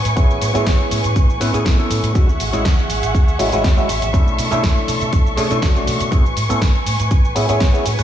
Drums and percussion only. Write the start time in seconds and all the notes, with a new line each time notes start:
0.05 closed hi-hat, cabasa
0.17 kick, closed hi-hat, cabasa
0.31 cabasa
0.42 open hi-hat, cabasa
0.55 closed hi-hat, cabasa
0.66 kick, snare, closed hi-hat, cabasa
0.80 cabasa
0.91 open hi-hat, cabasa
1.04 closed hi-hat, cabasa
1.16 kick, closed hi-hat, cabasa
1.30 cabasa
1.41 open hi-hat, cabasa
1.54 closed hi-hat, cabasa
1.66 kick, snare, closed hi-hat, cabasa
1.80 cabasa
1.91 open hi-hat, cabasa
2.04 closed hi-hat, cabasa
2.15 kick, closed hi-hat, cabasa
2.29 cabasa
2.40 open hi-hat, cabasa
2.53 closed hi-hat, cabasa
2.65 kick, snare, closed hi-hat, cabasa
2.79 cabasa
2.90 open hi-hat, cabasa
3.03 closed hi-hat, cabasa
3.15 kick, closed hi-hat, cabasa
3.28 cabasa
3.39 open hi-hat, cabasa
3.52 closed hi-hat, cabasa
3.64 kick, snare, closed hi-hat, cabasa
3.78 cabasa
3.89 open hi-hat, cabasa
4.02 closed hi-hat, cabasa
4.14 kick, closed hi-hat, cabasa
4.28 cabasa
4.38 open hi-hat, cabasa
4.52 closed hi-hat, cabasa
4.63 kick, snare, closed hi-hat, cabasa
4.77 cabasa
4.88 open hi-hat, cabasa
5.01 closed hi-hat, cabasa
5.13 kick, closed hi-hat, cabasa
5.27 cabasa
5.37 open hi-hat, cabasa
5.51 closed hi-hat, cabasa
5.62 kick, snare, closed hi-hat, cabasa
5.76 cabasa
5.87 open hi-hat, cabasa
6.00 closed hi-hat, cabasa
6.12 kick, closed hi-hat, cabasa
6.26 cabasa
6.37 open hi-hat, cabasa
6.50 closed hi-hat, cabasa
6.62 kick, cross-stick, snare, closed hi-hat, cabasa
6.75 cabasa
6.86 open hi-hat, cabasa
7.00 closed hi-hat, cabasa
7.11 kick, closed hi-hat, cabasa
7.25 cabasa
7.36 open hi-hat, cabasa
7.49 closed hi-hat, cabasa
7.60 kick, snare, closed hi-hat, cabasa
7.75 cabasa
7.86 open hi-hat, cabasa
7.99 cross-stick, closed hi-hat, cabasa